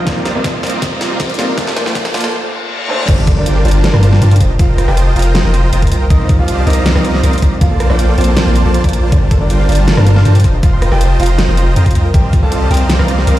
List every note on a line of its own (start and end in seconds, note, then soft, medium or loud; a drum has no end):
0.00 riser medium
0.05 0.33 C2 loud
0.05 1.36 C3 medium
0.05 1.36 A#3 medium
0.05 0.33 C4 loud
0.05 1.37 D#4 medium
0.05 1.37 F4 medium
0.05 0.12 A#4 medium
0.05 0.33 C5 medium
0.05 0.33 D5 medium
0.05 1.38 D5 medium
0.05 0.33 D#5 medium
0.05 0.33 F5 medium
0.05 0.33 A#5 loud
0.05 kick loud
0.05 snare medium
0.05 closed hi-hat medium
0.16 0.19 F4 medium
0.25 0.31 G4 medium
0.25 snare medium
0.25 closed hi-hat medium
0.35 0.61 C2 loud
0.35 0.61 C4 medium
0.35 0.40 A#4 medium
0.35 0.61 C5 medium
0.35 0.61 D5 medium
0.35 0.61 D#5 medium
0.35 0.61 F5 medium
0.35 0.61 A5 medium
0.44 0.53 F4 loud
0.44 kick loud
0.44 snare medium
0.44 closed hi-hat medium
0.54 0.57 G4 medium
0.63 0.90 C2 loud
0.63 0.89 C4 loud
0.63 0.69 A#4 medium
0.63 0.89 C5 medium
0.63 0.89 D5 medium
0.63 0.89 D#5 medium
0.63 0.90 F5 medium
0.63 0.89 A#5 loud
0.63 snare medium
0.63 closed hi-hat soft
0.67 closed hi-hat medium
0.70 0.76 F4 medium
0.70 closed hi-hat medium
0.82 0.88 G4 medium
0.82 kick loud
0.82 snare medium
0.82 closed hi-hat medium
0.92 1.18 C2 medium
0.92 1.18 C4 medium
0.92 0.97 A#4 medium
0.92 1.18 C5 medium
0.92 1.18 D5 medium
0.92 1.18 D#5 medium
0.92 1.18 F5 medium
0.92 1.18 A#5 medium
1.01 1.09 F4 loud
1.01 snare medium
1.01 closed hi-hat medium
1.11 1.14 G4 medium
1.20 1.37 C2 loud
1.20 1.32 C4 medium
1.20 1.25 A#4 medium
1.20 1.32 C5 medium
1.20 1.32 D5 medium
1.20 1.32 D#5 medium
1.20 1.32 F5 medium
1.20 1.32 A#5 loud
1.20 kick loud
1.20 snare medium
1.20 closed hi-hat medium
1.30 1.33 F4 medium
1.30 closed hi-hat soft
1.34 1.55 C3 medium
1.34 closed hi-hat medium
1.38 1.56 C2 medium
1.38 1.55 A#3 medium
1.38 1.51 C4 medium
1.38 1.55 D#4 medium
1.38 1.56 F4 medium
1.38 1.44 G4 medium
1.38 1.51 C5 medium
1.38 1.51 D5 medium
1.38 1.56 D5 medium
1.38 1.51 D#5 medium
1.38 1.51 F5 medium
1.38 1.51 A#5 medium
1.38 snare medium
1.38 closed hi-hat medium
1.48 1.54 A#4 medium
1.56 1.84 A#1 loud
1.56 2.86 A#2 medium
1.56 2.87 A3 medium
1.56 1.84 A#3 loud
1.56 2.88 D4 medium
1.56 1.66 F4 loud
1.56 1.84 F4 medium
1.56 1.84 C5 medium
1.56 1.84 D5 medium
1.56 1.84 A5 loud
1.56 kick loud
1.56 snare medium
1.56 closed hi-hat medium
1.60 2.88 C5 medium
1.67 1.70 A4 medium
1.67 snare medium
1.76 1.82 A#4 medium
1.76 snare loud
1.76 closed hi-hat medium
1.86 2.12 A#1 loud
1.86 2.12 A#3 medium
1.86 1.89 F4 medium
1.86 2.12 F4 medium
1.86 2.12 C5 medium
1.86 2.12 D5 medium
1.86 2.12 G5 medium
1.86 snare medium
1.95 2.01 A4 medium
1.95 kick loud
1.95 snare loud
1.95 closed hi-hat medium
2.05 2.10 A#4 medium
2.05 snare medium
2.14 2.33 A#1 loud
2.14 2.33 A#3 loud
2.14 2.22 F4 loud
2.14 2.33 F4 medium
2.14 2.33 C5 medium
2.14 2.33 D5 medium
2.14 2.33 A5 loud
2.14 snare loud
2.14 closed hi-hat soft
2.17 closed hi-hat medium
2.20 2.27 A4 medium
2.20 snare medium
2.20 closed hi-hat medium
2.33 reverse cymbal medium
2.89 3.06 A#2 medium
2.89 3.06 A3 medium
2.89 3.07 D4 medium
2.89 3.07 C5 loud
3.08 3.35 G1 medium
3.08 3.35 G3 loud
3.08 3.35 D4 medium
3.08 3.32 D4 medium
3.08 3.35 F4 medium
3.08 3.14 F4 medium
3.08 3.35 A#4 medium
3.08 3.35 C5 medium
3.08 3.32 D5 loud
3.08 3.35 A5 loud
3.08 kick loud
3.08 closed hi-hat medium
3.08 crash loud
3.08 impact medium
3.18 3.23 G4 medium
3.27 3.36 A4 loud
3.27 kick loud
3.27 closed hi-hat medium
3.37 3.63 G1 loud
3.37 3.63 G3 medium
3.37 3.63 D4 medium
3.37 3.61 D4 medium
3.37 3.63 F4 medium
3.37 3.63 A#4 medium
3.37 3.42 A#4 medium
3.37 3.63 C5 medium
3.37 3.61 D5 loud
3.37 3.63 G5 medium
3.46 3.52 F4 medium
3.46 closed hi-hat medium
3.56 3.64 G4 medium
3.65 3.92 G1 loud
3.65 3.91 G3 loud
3.65 3.91 D4 medium
3.65 4.52 D4 medium
3.65 3.91 F4 medium
3.65 3.71 F4 medium
3.65 3.91 A#4 medium
3.65 3.91 C5 medium
3.65 4.52 D5 loud
3.65 3.91 A5 loud
3.65 closed hi-hat medium
3.68 closed hi-hat medium
3.71 3.80 G4 medium
3.71 closed hi-hat medium
3.84 3.92 A4 loud
3.84 snare loud
3.84 closed hi-hat medium
3.93 4.20 G2 loud
3.93 4.19 G3 medium
3.93 4.19 D4 medium
3.93 4.19 F4 medium
3.93 4.19 A#4 medium
3.93 3.99 A#4 medium
3.93 4.19 C5 medium
3.93 4.19 A5 medium
3.93 cross-stick medium
4.03 4.08 F4 medium
4.03 closed hi-hat medium
4.13 4.20 G4 medium
4.13 snare soft
4.22 4.39 G2 loud
4.22 4.34 G3 medium
4.22 4.34 D4 medium
4.22 4.34 F4 medium
4.22 4.27 F4 medium
4.22 4.34 A#4 medium
4.22 4.34 C5 medium
4.22 4.34 A5 loud
4.22 closed hi-hat medium
4.31 4.37 G4 medium
4.31 closed hi-hat medium
4.36 closed hi-hat medium
4.40 4.58 F1 loud
4.40 4.53 F4 medium
4.40 4.53 C5 medium
4.40 4.49 C5 loud
4.40 4.53 D#5 medium
4.40 4.53 G5 medium
4.40 4.53 A#5 medium
4.40 kick medium
4.40 closed hi-hat medium
4.50 4.55 D#5 medium
4.59 4.86 F1 loud
4.59 4.86 F4 loud
4.59 4.65 F4 medium
4.59 4.83 F4 medium
4.59 4.86 C5 medium
4.59 4.86 D#5 medium
4.59 4.83 F5 loud
4.59 4.86 G5 medium
4.59 4.86 A#5 loud
4.59 kick loud
4.59 closed hi-hat medium
4.69 4.77 A#4 medium
4.78 4.84 F4 medium
4.78 cross-stick medium
4.78 closed hi-hat medium
4.88 5.14 F1 loud
4.88 5.14 F4 medium
4.88 5.11 G4 medium
4.88 4.93 A#4 medium
4.88 5.14 C5 medium
4.88 5.14 D#5 medium
4.88 5.11 G5 loud
4.88 5.14 G5 medium
4.88 5.14 A5 medium
4.88 cross-stick medium
4.97 5.05 C5 loud
4.97 closed hi-hat medium
5.07 5.12 D#5 medium
5.16 5.43 F1 loud
5.16 6.03 F4 medium
5.16 5.42 F4 loud
5.16 5.22 F4 medium
5.16 5.42 C5 medium
5.16 5.42 D#5 medium
5.16 6.03 F5 medium
5.16 5.42 G5 medium
5.16 5.42 A#5 loud
5.16 closed hi-hat soft
5.19 closed hi-hat medium
5.22 5.34 A#4 medium
5.22 closed hi-hat medium
5.35 5.40 F4 medium
5.35 snare loud
5.35 closed hi-hat medium
5.44 5.71 F1 medium
5.44 5.70 F4 medium
5.44 5.50 A#4 medium
5.44 5.70 C5 medium
5.44 5.70 D#5 medium
5.44 5.70 G5 medium
5.44 5.70 A#5 medium
5.54 5.62 C5 loud
5.54 closed hi-hat medium
5.64 5.69 D#5 medium
5.73 5.90 F1 loud
5.73 5.78 F4 medium
5.73 5.85 F4 medium
5.73 5.85 C5 medium
5.73 5.85 D#5 medium
5.73 5.85 G5 medium
5.73 5.85 A#5 loud
5.73 closed hi-hat medium
5.82 5.90 A#4 medium
5.82 kick medium
5.82 closed hi-hat soft
5.87 closed hi-hat medium
5.91 6.09 C2 loud
5.91 5.97 F4 medium
5.91 6.04 F4 medium
5.91 6.04 C5 medium
5.91 6.04 D#5 medium
5.91 6.04 G5 medium
5.91 6.04 A#5 medium
5.91 closed hi-hat medium
6.01 6.06 A#4 medium
6.10 6.37 C2 loud
6.10 6.37 C4 loud
6.10 6.34 D#4 medium
6.10 6.19 A#4 loud
6.10 6.37 C5 medium
6.10 6.37 D5 medium
6.10 6.34 D#5 loud
6.10 6.37 D#5 medium
6.10 6.37 F5 medium
6.10 6.37 A#5 loud
6.10 kick loud
6.10 closed hi-hat medium
6.20 6.25 C5 medium
6.29 6.35 F4 medium
6.29 kick loud
6.29 closed hi-hat medium
6.39 6.65 C2 loud
6.39 6.65 C4 medium
6.39 6.62 F4 medium
6.39 6.47 G4 medium
6.39 6.65 C5 medium
6.39 6.65 D5 medium
6.39 6.65 D#5 medium
6.39 6.62 F5 loud
6.39 6.65 F5 medium
6.39 6.65 A5 medium
6.48 6.54 F4 medium
6.48 closed hi-hat medium
6.58 6.63 G4 medium
6.67 6.94 C2 loud
6.67 6.93 C4 loud
6.67 7.54 D#4 medium
6.67 6.75 A#4 loud
6.67 6.93 C5 medium
6.67 6.93 D5 medium
6.67 7.54 D#5 loud
6.67 6.93 D#5 medium
6.67 6.93 F5 medium
6.67 6.93 A#5 loud
6.67 closed hi-hat soft
6.70 closed hi-hat medium
6.73 6.82 C5 medium
6.73 closed hi-hat medium
6.86 6.91 F4 medium
6.86 snare loud
6.86 closed hi-hat medium
6.95 7.22 C2 medium
6.95 7.21 C4 medium
6.95 7.03 G4 medium
6.95 7.21 C5 medium
6.95 7.21 D5 medium
6.95 7.21 D#5 medium
6.95 7.21 F5 medium
6.95 7.21 A#5 medium
6.95 cross-stick medium
7.05 7.10 F4 medium
7.05 closed hi-hat medium
7.14 7.20 G4 medium
7.14 snare soft
7.23 7.41 C2 loud
7.23 7.36 C4 medium
7.23 7.32 A#4 loud
7.23 7.36 C5 medium
7.23 7.36 D5 medium
7.23 7.36 D#5 medium
7.23 7.36 F5 medium
7.23 7.36 A#5 loud
7.23 closed hi-hat medium
7.33 7.38 C5 medium
7.33 closed hi-hat soft
7.38 closed hi-hat medium
7.42 7.60 C2 loud
7.42 7.55 C4 medium
7.42 7.48 F4 medium
7.42 7.55 C5 medium
7.42 7.55 D5 medium
7.42 7.55 D#5 medium
7.42 7.55 F5 medium
7.42 7.55 A#5 medium
7.42 kick medium
7.42 closed hi-hat medium
7.52 7.60 G4 medium
7.61 7.88 A#1 loud
7.61 7.88 A#3 loud
7.61 7.85 F4 medium
7.61 7.67 F4 medium
7.61 7.88 F4 medium
7.61 7.88 C5 medium
7.61 7.88 D5 medium
7.61 7.85 F5 loud
7.61 7.88 A5 loud
7.61 kick loud
7.61 closed hi-hat medium
7.71 7.76 A4 medium
7.80 7.88 A#4 loud
7.80 cross-stick medium
7.80 closed hi-hat medium
7.90 8.16 A#1 loud
7.90 8.16 A#3 medium
7.90 8.13 D4 medium
7.90 8.16 F4 medium
7.90 7.95 C5 medium
7.90 8.16 C5 medium
7.90 8.13 D5 loud
7.90 8.16 D5 medium
7.90 8.16 G5 medium
7.90 cross-stick medium
7.99 8.04 F4 medium
7.99 closed hi-hat medium
8.09 8.16 A4 medium
8.18 8.45 A#1 loud
8.18 8.44 A#3 loud
8.18 9.05 C4 medium
8.18 8.23 F4 medium
8.18 8.44 F4 medium
8.18 8.44 C5 medium
8.18 9.05 C5 loud
8.18 8.44 D5 medium
8.18 8.44 A5 loud
8.18 closed hi-hat soft
8.21 closed hi-hat medium
8.24 8.33 A4 medium
8.24 closed hi-hat medium
8.37 8.45 A#4 loud
8.37 snare loud
8.37 closed hi-hat medium
8.46 8.63 A#1 loud
8.46 8.63 A#3 medium
8.46 8.63 F4 medium
8.46 8.52 C5 medium
8.46 8.63 C5 medium
8.46 8.63 D5 medium
8.46 8.63 A5 medium
8.56 8.59 C5 medium
8.56 closed hi-hat medium
8.65 8.82 A#1 loud
8.65 8.82 A#3 medium
8.65 8.82 F4 medium
8.65 8.70 A4 medium
8.65 8.82 C5 medium
8.65 8.82 D5 medium
8.65 8.82 A5 loud
8.74 8.80 F4 loud
8.74 closed hi-hat medium
8.84 9.14 A#1 loud
8.84 9.10 A#3 loud
8.84 9.10 F4 medium
8.84 8.89 A#4 loud
8.84 9.10 C5 medium
8.84 9.10 D5 medium
8.84 9.10 A5 loud
8.84 kick medium
8.84 closed hi-hat soft
8.89 closed hi-hat medium
8.93 9.01 A#4 medium
8.93 closed hi-hat medium
9.03 9.06 F4 medium
9.12 9.39 G1 loud
9.12 9.38 G3 loud
9.12 9.39 D4 medium
9.12 9.36 D4 medium
9.12 9.18 F4 medium
9.12 9.39 F4 medium
9.12 9.39 A#4 medium
9.12 9.39 C5 medium
9.12 9.36 D5 loud
9.12 9.39 A5 loud
9.12 kick loud
9.12 closed hi-hat medium
9.22 9.27 G4 medium
9.31 9.39 A4 loud
9.31 kick loud
9.31 closed hi-hat medium
9.41 9.67 G1 loud
9.41 9.67 G3 medium
9.41 9.67 D4 medium
9.41 9.64 D4 medium
9.41 9.67 F4 medium
9.41 9.67 A#4 medium
9.41 9.46 A#4 medium
9.41 9.67 C5 medium
9.41 9.64 D5 loud
9.41 9.67 G5 medium
9.50 9.55 F4 medium
9.50 closed hi-hat medium
9.60 9.63 F5 loud
9.69 9.96 G1 loud
9.69 9.95 G3 loud
9.69 10.56 D4 medium
9.69 9.95 D4 medium
9.69 9.95 F4 medium
9.69 9.74 F4 medium
9.69 9.95 A#4 medium
9.69 9.95 C5 medium
9.69 10.56 D5 medium
9.69 9.95 A5 loud
9.69 closed hi-hat soft
9.72 closed hi-hat medium
9.75 9.84 G4 medium
9.75 closed hi-hat medium
9.88 9.96 A4 loud
9.88 snare loud
9.88 closed hi-hat medium
9.97 10.24 G2 loud
9.97 10.23 G3 medium
9.97 10.23 D4 medium
9.97 10.23 F4 medium
9.97 10.23 A#4 medium
9.97 10.03 A#4 medium
9.97 10.23 C5 medium
9.97 10.23 A5 medium
9.97 cross-stick medium
10.07 10.12 F4 medium
10.07 closed hi-hat medium
10.16 10.19 F5 loud
10.16 snare soft
10.25 10.43 G2 loud
10.25 10.38 G3 medium
10.25 10.38 D4 medium
10.25 10.38 F4 medium
10.25 10.31 F4 medium
10.25 10.38 A#4 medium
10.25 10.38 C5 medium
10.25 10.38 A5 loud
10.25 closed hi-hat medium
10.35 10.40 G4 medium
10.35 closed hi-hat soft
10.40 closed hi-hat medium
10.44 10.61 F1 loud
10.44 10.56 F4 medium
10.44 10.56 C5 medium
10.44 10.53 C5 loud
10.44 10.56 D#5 medium
10.44 10.56 G5 medium
10.44 10.56 A#5 medium
10.44 kick medium
10.44 closed hi-hat medium
10.54 10.59 D#5 medium
10.63 10.90 F1 loud
10.63 10.89 F4 loud
10.63 10.87 F4 medium
10.63 10.69 F4 medium
10.63 10.89 C5 medium
10.63 10.89 D#5 medium
10.63 10.87 F5 loud
10.63 10.89 G5 medium
10.63 10.89 A#5 loud
10.63 kick loud
10.63 closed hi-hat medium
10.73 10.76 C6 loud
10.82 10.88 F4 medium
10.82 cross-stick medium
10.82 closed hi-hat medium
10.92 11.18 F1 loud
10.92 11.18 F4 medium
10.92 11.15 G4 medium
10.92 10.97 A#4 medium
10.92 11.18 C5 medium
10.92 11.18 D#5 medium
10.92 11.18 G5 medium
10.92 11.15 G5 loud
10.92 11.18 A5 medium
10.92 cross-stick medium
11.01 11.09 C5 loud
11.01 closed hi-hat medium
11.11 11.16 D#5 medium
11.20 11.47 F1 loud
11.20 11.46 F4 loud
11.20 12.07 F4 medium
11.20 11.25 F4 medium
11.20 11.46 C5 medium
11.20 11.46 D#5 medium
11.20 12.07 F5 medium
11.20 11.46 G5 medium
11.20 11.46 A#5 loud
11.20 closed hi-hat soft
11.23 closed hi-hat medium
11.26 11.33 C6 loud
11.26 closed hi-hat medium
11.39 11.44 F4 medium
11.39 snare loud
11.39 closed hi-hat medium
11.48 11.75 F1 loud
11.48 11.74 F4 medium
11.48 11.54 A#4 medium
11.48 11.74 C5 medium
11.48 11.74 D#5 medium
11.48 11.74 G5 medium
11.48 11.74 A#5 medium
11.57 11.66 C5 loud
11.57 closed hi-hat medium
11.67 11.72 D#5 medium
11.76 11.97 F2 loud
11.76 11.89 F4 medium
11.76 11.82 F4 medium
11.76 11.89 C5 medium
11.76 11.89 D#5 medium
11.76 11.89 G5 medium
11.76 11.89 A#5 loud
11.76 closed hi-hat medium
11.86 11.89 C6 loud
11.86 kick medium
11.86 closed hi-hat soft
11.91 closed hi-hat medium
11.95 12.12 C2 loud
11.95 12.07 F4 medium
11.95 12.01 F4 medium
11.95 12.07 C5 medium
11.95 12.07 D#5 medium
11.95 12.07 G5 medium
11.95 12.07 A#5 medium
11.95 closed hi-hat medium
12.05 12.10 A#4 medium
12.14 12.41 C2 medium
12.14 12.40 C4 loud
12.14 12.38 G4 medium
12.14 12.22 A#4 loud
12.14 12.40 C5 medium
12.14 12.40 D5 medium
12.14 12.40 D#5 medium
12.14 12.40 F5 medium
12.14 12.38 G5 loud
12.14 12.40 A#5 loud
12.14 kick loud
12.14 closed hi-hat medium
12.24 12.29 C5 medium
12.33 12.38 F4 medium
12.33 kick loud
12.33 closed hi-hat medium
12.43 12.69 C2 loud
12.43 12.69 C4 medium
12.43 12.66 A4 medium
12.43 12.69 C5 medium
12.43 12.69 D5 medium
12.43 12.69 D#5 medium
12.43 12.69 F5 medium
12.43 12.46 F5 loud
12.43 12.69 A5 medium
12.43 12.66 A5 loud
12.52 12.57 F4 medium
12.52 closed hi-hat medium
12.62 12.67 G4 medium
12.71 12.97 C2 loud
12.71 12.97 C4 loud
12.71 13.39 G4 medium
12.71 12.79 A#4 loud
12.71 12.97 C5 medium
12.71 12.97 D5 medium
12.71 12.97 D#5 medium
12.71 12.97 F5 medium
12.71 13.39 G5 loud
12.71 12.97 A#5 loud
12.71 closed hi-hat soft
12.74 closed hi-hat medium
12.77 12.86 C5 medium
12.77 closed hi-hat medium
12.90 12.95 F4 medium
12.90 snare loud
12.90 closed hi-hat medium
12.99 13.26 C2 loud
12.99 13.25 C4 medium
12.99 13.25 C5 medium
12.99 13.25 D5 medium
12.99 13.25 D#5 medium
12.99 13.25 F5 medium
12.99 13.02 F5 loud
12.99 13.25 A#5 medium
12.99 cross-stick medium
13.08 13.14 F4 medium
13.08 closed hi-hat medium
13.18 13.23 G4 medium
13.18 snare soft
13.27 13.39 C2 loud
13.27 13.39 C4 medium
13.27 13.36 A#4 loud
13.27 13.39 C5 medium
13.27 13.39 D5 medium
13.27 13.39 D#5 medium
13.27 13.39 F5 medium
13.27 13.39 A#5 loud
13.27 closed hi-hat medium